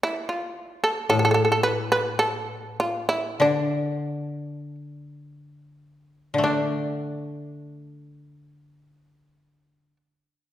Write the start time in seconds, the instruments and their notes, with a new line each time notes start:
0.03 shamisen E4
0.29 shamisen F4
0.84 shamisen A4
1.09 koto A2, shamisen A4
1.19 shamisen A4
1.25 shamisen A4
1.31 shamisen A4
1.45 shamisen A4
1.52 shamisen A4
1.63 shamisen B4
1.92 shamisen B4
2.19 shamisen A4
2.80 shamisen F4
3.09 shamisen E4
3.40 koto D3, shamisen D4
6.34 koto D3
6.38 koto A3
6.44 shamisen D4, koto D4